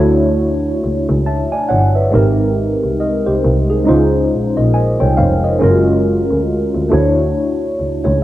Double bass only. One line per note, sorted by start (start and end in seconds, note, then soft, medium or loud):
0.00 0.67 D2 medium
0.84 1.02 C#2 soft
1.09 1.23 C#2 medium
1.71 2.05 G1 medium
2.14 2.70 G#1 medium
2.84 2.95 C2 soft
3.27 3.39 C2 soft
3.45 3.79 C2 medium
3.88 4.23 C#2 medium
4.32 4.50 A#1 soft
4.58 4.71 A#1 medium
5.01 5.14 C2 medium
5.18 5.53 F1 medium
5.61 6.17 F#1 medium
6.31 6.43 D2 soft
6.75 6.87 D2 soft
6.92 7.27 D2 medium
7.79 7.98 C#2 soft
8.05 8.19 C#2 medium